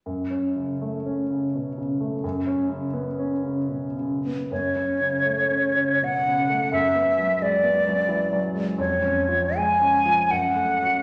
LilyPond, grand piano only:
\new Staff \with { instrumentName = "Grand piano" } { \clef bass \time 3/4 \key fis \minor \tempo 4 = 82 \tuplet 3/2 { fis,8 cis'8 cis8 a8 cis'8 cis8 b,8 cis8 a8 } | \tuplet 3/2 { fis,8 cis'8 cis8 b8 cis'8 cis8 b,8 cis8 b8 } | \tuplet 3/2 { fis,8 cis'8 cis8 a8 cis'8 cis8 b,8 cis8 a8 } | \tuplet 3/2 { fis,8 b8 fis8 gis8 b8 fis8 e8 fis8 gis8 } |
\tuplet 3/2 { eis,8 cis'8 eis8 gis8 cis'8 eis8 fis,8 a8 <cis' fis'>8 } | }